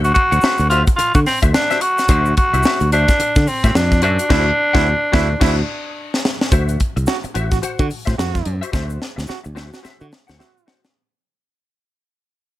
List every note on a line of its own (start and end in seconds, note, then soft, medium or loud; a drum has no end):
0.00 0.11 D2 medium
0.00 0.10 E5 medium
0.04 0.14 F#4 loud
0.04 closed hi-hat soft
0.04 shaker medium
0.14 0.66 F#4 loud
0.14 kick medium
0.14 closed hi-hat medium
0.31 0.41 D2 medium
0.31 0.41 F#4 medium
0.31 0.42 C5 medium
0.31 0.43 F#5 medium
0.31 closed hi-hat soft
0.31 shaker medium
0.41 0.65 F#4 medium
0.41 0.59 C5 medium
0.41 0.58 E5 loud
0.41 muted fingered electric bass stroke medium
0.41 snare loud
0.41 shaker medium
0.58 0.83 D2 medium
0.58 muted clean electric guitar stroke soft
0.58 closed hi-hat soft
0.58 shaker medium
0.70 0.82 F4 loud
0.70 0.89 F#4 medium
0.70 0.87 C5 medium
0.70 0.86 E5 medium
0.70 closed hi-hat medium
0.70 shaker medium
0.87 muted clean electric guitar stroke soft
0.87 kick loud
0.87 closed hi-hat medium
0.87 shaker medium
0.96 1.13 F4 loud
0.96 muted fingered electric bass stroke soft
0.96 muted clean electric guitar stroke soft
0.96 closed hi-hat loud
0.96 shaker medium
1.14 1.24 D3 loud
1.14 1.20 F#4 medium
1.14 muted clean electric guitar stroke medium
1.14 kick loud
1.14 closed hi-hat soft
1.14 shaker medium
1.26 1.39 C4 medium
1.26 snare soft
1.26 open hi-hat medium
1.26 shaker soft
1.42 1.52 D2 medium
1.42 1.53 F#4 medium
1.42 1.53 C5 medium
1.42 1.54 E5 medium
1.42 kick medium
1.42 closed hi-hat soft
1.42 shaker medium
1.54 1.83 D4 loud
1.54 snare loud
1.54 shaker medium
1.70 1.80 F#4 medium
1.70 1.81 C5 medium
1.70 1.81 E5 medium
1.70 snare soft
1.70 closed hi-hat soft
1.70 shaker medium
1.81 2.37 F#4 loud
1.81 muted clean electric guitar stroke soft
1.81 closed hi-hat loud
1.98 muted clean electric guitar stroke medium
1.98 snare soft
1.98 closed hi-hat medium
1.98 shaker medium
2.08 2.33 D2 loud
2.08 2.31 F#4 medium
2.08 2.31 C5 loud
2.08 2.31 E5 loud
2.08 kick loud
2.08 closed hi-hat loud
2.08 shaker medium
2.26 shaker medium
2.36 2.88 F#4 loud
2.36 muted clean electric guitar stroke medium
2.36 kick loud
2.36 closed hi-hat medium
2.53 2.63 C2 medium
2.53 2.63 F#4 medium
2.53 2.64 C5 medium
2.53 2.64 E5 medium
2.53 closed hi-hat soft
2.53 shaker medium
2.63 2.86 F#4 medium
2.63 2.81 C5 medium
2.63 2.80 E5 medium
2.63 muted fingered electric bass stroke medium
2.63 snare loud
2.63 shaker medium
2.80 3.05 D2 loud
2.80 muted clean electric guitar stroke medium
2.80 closed hi-hat soft
2.80 shaker medium
2.92 3.49 D4 loud
2.92 3.10 F#4 medium
2.92 3.08 C5 medium
2.92 3.07 E5 medium
2.92 closed hi-hat medium
2.92 shaker medium
3.08 muted clean electric guitar stroke soft
3.08 kick loud
3.08 snare soft
3.08 closed hi-hat medium
3.08 shaker medium
3.20 muted fingered electric bass stroke medium
3.20 muted clean electric guitar stroke soft
3.20 closed hi-hat loud
3.20 shaker medium
3.36 3.46 D3 loud
3.36 muted clean electric guitar stroke soft
3.36 kick loud
3.36 snare soft
3.36 closed hi-hat soft
3.36 shaker medium
3.47 3.78 C4 medium
3.47 open hi-hat medium
3.47 shaker medium
3.64 3.73 A2 medium
3.64 3.74 F#4 medium
3.64 3.74 C5 medium
3.64 3.75 E5 medium
3.64 kick medium
3.64 snare soft
3.64 closed hi-hat soft
3.64 shaker medium
3.75 4.03 F2 medium
3.75 4.03 D4 medium
3.75 muted clean electric guitar stroke medium
3.75 snare loud
3.75 shaker medium
3.91 muted clean electric guitar stroke medium
3.91 kick medium
3.91 snare soft
3.91 shaker medium
4.02 4.17 F#2 loud
4.02 6.21 D4 loud
4.02 4.24 F#4 medium
4.02 4.18 C5 medium
4.02 4.17 E5 loud
4.02 closed hi-hat medium
4.19 muted clean electric guitar stroke medium
4.19 closed hi-hat medium
4.19 shaker medium
4.29 4.50 D2 loud
4.29 4.45 E4 loud
4.29 4.49 F#4 loud
4.29 4.50 C5 loud
4.29 4.50 E5 loud
4.29 kick loud
4.29 snare loud
4.29 crash medium
4.73 4.93 D2 loud
4.73 4.88 E4 loud
4.73 4.93 F#4 loud
4.73 4.92 C5 loud
4.73 4.92 F#5 loud
4.73 kick loud
4.73 snare medium
5.12 5.33 D2 loud
5.12 5.28 E4 loud
5.12 5.32 F#4 loud
5.12 5.33 C5 loud
5.12 5.33 E5 loud
5.12 kick loud
5.12 snare loud
5.40 5.61 D2 loud
5.40 5.56 E4 loud
5.40 5.60 F#4 loud
5.40 5.61 C5 loud
5.40 5.61 E5 loud
5.40 kick loud
5.40 snare loud
5.40 crash medium
6.14 snare medium
6.25 snare loud
6.41 snare loud
6.52 6.76 D2 medium
6.52 6.78 F#4 medium
6.52 6.78 C5 medium
6.52 6.78 E5 medium
6.52 kick loud
6.52 closed hi-hat loud
6.52 shaker medium
6.69 closed hi-hat soft
6.69 shaker soft
6.80 kick medium
6.80 closed hi-hat medium
6.96 7.06 C2 medium
6.96 muted clean electric guitar stroke medium
6.96 closed hi-hat soft
6.96 shaker medium
7.06 7.18 F#4 loud
7.06 muted clean electric guitar stroke soft
7.06 snare loud
7.06 shaker medium
7.23 muted clean electric guitar stroke soft
7.23 muted fingered electric bass stroke soft
7.23 closed hi-hat soft
7.23 shaker medium
7.34 7.59 A1 medium
7.34 7.57 F#4 medium
7.34 7.51 C5 medium
7.34 7.51 E5 medium
7.34 closed hi-hat medium
7.34 shaker medium
7.51 7.59 F#4 medium
7.51 muted clean electric guitar stroke soft
7.51 kick loud
7.51 snare soft
7.51 closed hi-hat soft
7.51 shaker medium
7.62 7.84 F#4 medium
7.62 7.85 C5 medium
7.62 7.85 F#5 medium
7.62 muted fingered electric bass stroke soft
7.62 closed hi-hat loud
7.62 shaker medium
7.79 7.89 D3 loud
7.79 7.87 F#4 loud
7.79 kick loud
7.79 closed hi-hat soft
7.79 shaker medium
7.89 muted clean electric guitar stroke soft
7.89 open hi-hat medium
7.89 shaker medium
8.05 8.17 A2 medium
8.05 8.16 F#4 medium
8.05 8.17 C5 medium
8.05 8.17 E5 medium
8.05 kick loud
8.05 snare soft
8.05 closed hi-hat soft
8.05 shaker medium
8.17 8.42 F2 medium
8.17 8.56 F#4 loud
8.17 muted clean electric guitar stroke soft
8.17 snare loud
8.17 shaker medium
8.34 muted clean electric guitar stroke soft
8.34 kick medium
8.34 snare soft
8.34 closed hi-hat soft
8.34 shaker medium
8.45 8.60 F#2 medium
8.45 closed hi-hat medium
8.61 8.71 F#4 medium
8.61 8.72 C5 medium
8.61 8.73 E5 medium
8.61 closed hi-hat medium
8.61 shaker medium
8.72 8.97 D2 loud
8.72 8.99 F#4 loud
8.72 8.99 C5 loud
8.72 9.00 E5 loud
8.72 kick loud
8.72 snare medium
8.72 shaker medium
8.90 shaker medium
9.02 snare medium
9.16 9.27 D2 medium
9.16 muted clean electric guitar stroke medium
9.16 snare medium
9.16 shaker medium
9.27 9.39 F#4 loud
9.27 muted clean electric guitar stroke soft
9.27 muted fingered electric bass stroke medium
9.27 snare medium
9.27 shaker medium
9.44 9.69 D2 medium
9.44 muted clean electric guitar stroke medium
9.44 shaker medium
9.55 9.78 F#4 medium
9.55 9.71 C5 medium
9.55 9.70 E5 medium
9.55 snare medium
9.55 shaker soft
9.72 9.80 F#4 medium
9.72 muted clean electric guitar stroke soft
9.72 snare medium
9.72 shaker medium
9.82 10.05 F#4 medium
9.82 10.06 C5 loud
9.82 10.06 E5 loud
9.82 muted fingered electric bass stroke soft
9.82 snare medium
9.82 shaker medium
10.00 10.11 D3 loud
10.00 10.07 F#4 loud
10.00 shaker medium
10.11 muted clean electric guitar stroke soft
10.11 snare loud
10.11 shaker soft
10.27 10.39 D2 medium
10.27 10.37 F#4 medium
10.27 10.38 C5 medium
10.27 10.39 F#5 medium
10.27 snare medium
10.27 shaker medium
10.38 10.61 F#4 medium
10.38 10.77 F#4 loud
10.38 10.54 C5 medium
10.38 10.53 E5 medium
10.38 snare loud
10.38 shaker medium
10.54 muted clean electric guitar stroke medium
10.54 shaker medium
10.66 10.85 F#4 medium
10.66 10.82 C5 medium
10.66 10.82 F#5 medium
10.66 snare loud
10.82 muted clean electric guitar stroke medium
10.82 snare loud
10.82 shaker medium